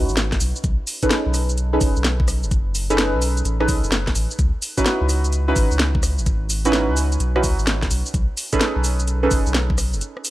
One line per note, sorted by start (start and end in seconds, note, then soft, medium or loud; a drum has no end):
0.00 0.63 C#4 medium
0.00 0.63 D#4 medium
0.00 0.63 E4 medium
0.00 0.63 F#4 medium
0.00 0.63 B4 medium
0.09 0.38 G#1 medium
0.09 shaker soft
0.17 snare loud
0.17 closed hi-hat medium
0.17 shaker soft
0.32 kick medium
0.32 snare medium
0.32 closed hi-hat soft
0.40 0.52 B1 loud
0.40 open hi-hat medium
0.40 shaker medium
0.56 shaker soft
0.64 0.76 B1 loud
0.64 kick loud
0.64 closed hi-hat medium
0.64 shaker soft
0.87 open hi-hat loud
0.87 shaker medium
1.03 1.69 C#4 loud
1.03 1.69 D#4 medium
1.03 1.69 G#4 medium
1.03 1.69 A4 medium
1.03 1.69 B4 loud
1.03 kick medium
1.03 closed hi-hat medium
1.03 shaker soft
1.11 snare loud
1.11 closed hi-hat medium
1.11 shaker soft
1.26 1.78 B1 loud
1.34 cross-stick soft
1.34 open hi-hat medium
1.34 shaker medium
1.49 closed hi-hat soft
1.49 shaker soft
1.58 closed hi-hat medium
1.58 shaker soft
1.73 2.87 C#4 medium
1.73 2.87 D#4 medium
1.73 2.87 G#4 medium
1.73 2.87 A4 medium
1.73 2.87 B4 medium
1.81 1.93 F#1 medium
1.81 kick loud
1.81 open hi-hat medium
1.81 shaker medium
1.96 2.45 B1 medium
1.96 shaker soft
2.04 snare loud
2.04 closed hi-hat medium
2.04 shaker soft
2.20 kick loud
2.28 cross-stick medium
2.28 open hi-hat medium
2.28 shaker medium
2.43 3.15 F#1 medium
2.43 shaker soft
2.51 kick loud
2.51 closed hi-hat medium
2.51 shaker soft
2.75 open hi-hat loud
2.75 shaker medium
2.90 3.57 C#4 loud
2.90 3.57 D#4 medium
2.90 3.57 G#4 medium
2.90 3.57 A4 medium
2.90 3.57 B4 loud
2.90 closed hi-hat medium
2.90 shaker soft
2.98 snare loud
2.98 closed hi-hat medium
2.98 shaker soft
3.14 3.42 B1 loud
3.22 open hi-hat medium
3.22 shaker medium
3.37 closed hi-hat soft
3.37 shaker soft
3.45 3.70 A1 medium
3.45 closed hi-hat medium
3.45 shaker soft
3.60 4.38 C#4 medium
3.60 4.38 D#4 medium
3.60 4.38 G#4 medium
3.60 4.38 A4 medium
3.60 4.38 B4 medium
3.60 cross-stick medium
3.68 3.80 B1 medium
3.68 kick loud
3.68 open hi-hat medium
3.68 shaker medium
3.84 4.12 F#1 medium
3.84 shaker soft
3.92 snare loud
3.92 closed hi-hat medium
3.92 shaker soft
4.07 kick medium
4.07 snare medium
4.07 closed hi-hat soft
4.15 4.27 A1 loud
4.15 open hi-hat medium
4.15 shaker medium
4.31 shaker soft
4.39 4.51 C#2 loud
4.39 kick loud
4.39 closed hi-hat medium
4.39 shaker soft
4.62 open hi-hat loud
4.62 shaker medium
4.77 5.44 C#4 loud
4.77 5.44 D#4 medium
4.77 5.44 E4 medium
4.77 5.44 F#4 medium
4.77 5.44 B4 loud
4.77 kick medium
4.77 closed hi-hat medium
4.77 shaker soft
4.86 snare loud
4.86 closed hi-hat medium
4.86 shaker soft
5.01 5.53 C#2 loud
5.09 cross-stick soft
5.09 open hi-hat medium
5.09 shaker medium
5.25 closed hi-hat soft
5.25 shaker soft
5.33 closed hi-hat medium
5.33 shaker soft
5.48 6.61 C#4 medium
5.48 6.62 D#4 medium
5.48 6.61 E4 medium
5.48 6.61 F#4 medium
5.48 6.62 B4 medium
5.56 5.68 G#1 medium
5.56 kick loud
5.56 open hi-hat medium
5.56 shaker medium
5.71 6.20 C#2 medium
5.71 shaker soft
5.79 snare loud
5.79 closed hi-hat medium
5.79 shaker soft
5.95 kick loud
6.03 cross-stick medium
6.03 open hi-hat medium
6.03 shaker medium
6.18 6.90 G#1 medium
6.18 shaker soft
6.26 kick loud
6.26 closed hi-hat medium
6.26 shaker soft
6.50 open hi-hat loud
6.50 shaker medium
6.65 7.32 C#4 medium
6.65 7.32 D#4 medium
6.65 7.32 E4 medium
6.65 7.32 F#4 medium
6.65 7.32 B4 loud
6.65 closed hi-hat medium
6.65 shaker soft
6.73 snare loud
6.73 closed hi-hat medium
6.73 shaker soft
6.88 7.17 C#2 loud
6.97 open hi-hat medium
6.97 shaker medium
7.12 closed hi-hat soft
7.12 shaker soft
7.20 7.45 B1 medium
7.20 closed hi-hat medium
7.20 shaker soft
7.35 8.13 C#4 medium
7.35 8.13 D#4 medium
7.35 8.13 E4 medium
7.35 8.13 F#4 medium
7.35 8.13 B4 medium
7.35 cross-stick medium
7.44 7.55 C#2 medium
7.44 kick loud
7.44 open hi-hat loud
7.44 shaker medium
7.59 7.87 G#1 medium
7.59 shaker soft
7.67 snare loud
7.67 closed hi-hat medium
7.67 shaker soft
7.82 kick medium
7.82 snare medium
7.82 closed hi-hat soft
7.91 8.02 B1 loud
7.91 open hi-hat loud
7.91 shaker medium
8.06 shaker soft
8.14 8.26 B1 loud
8.14 kick loud
8.14 closed hi-hat medium
8.14 shaker soft
8.37 open hi-hat loud
8.37 shaker medium
8.53 9.19 C#4 loud
8.53 9.19 D#4 medium
8.53 9.19 G#4 medium
8.53 9.19 A4 medium
8.53 9.19 B4 loud
8.53 kick medium
8.53 closed hi-hat medium
8.53 shaker soft
8.61 snare loud
8.61 closed hi-hat medium
8.61 shaker soft
8.76 9.28 B1 loud
8.84 open hi-hat medium
8.84 shaker medium
9.00 closed hi-hat soft
9.00 shaker soft
9.08 closed hi-hat medium
9.08 shaker soft
9.23 10.30 C#4 medium
9.23 10.30 D#4 medium
9.23 10.30 G#4 medium
9.23 10.30 A4 medium
9.23 10.30 B4 medium
9.31 9.43 F#1 medium
9.31 kick loud
9.31 open hi-hat loud
9.31 shaker medium
9.46 9.95 B1 medium
9.46 shaker soft
9.54 snare loud
9.54 closed hi-hat medium
9.54 shaker soft
9.70 kick loud
9.78 cross-stick medium
9.78 open hi-hat loud
9.78 shaker medium
9.93 10.01 F#1 medium
9.93 shaker soft
10.01 closed hi-hat medium
10.01 shaker soft
10.17 cross-stick soft
10.25 open hi-hat loud
10.25 shaker medium